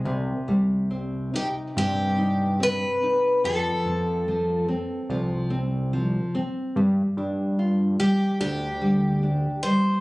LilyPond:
<<
  \new Staff \with { instrumentName = "Twelve-string acoustic guitar" } { \time 4/4 \key c \minor \tempo 4 = 72 r4. g'8 g'4 b'4 | a'4. r2 r8 | r4. g'8 g'4. c''8 | }
  \new Staff \with { instrumentName = "Nylon-string guitar" } { \time 4/4 \key c \minor c8 g8 c'8 ees'8 c'8 ees'8 c'8 ees'8 | f8 c'8 f8 c'8 f8 c'8 f8 c'8 | g8 d'8 f'8 g8 d'8 g8 d'8 g8 | }
  \new Staff \with { instrumentName = "Analog synth bass" } { \clef bass \time 4/4 \key c \minor c,8 c,4. g,2 | f,8 f,4. c,2 | g,8 g,4. d,2 | }
>>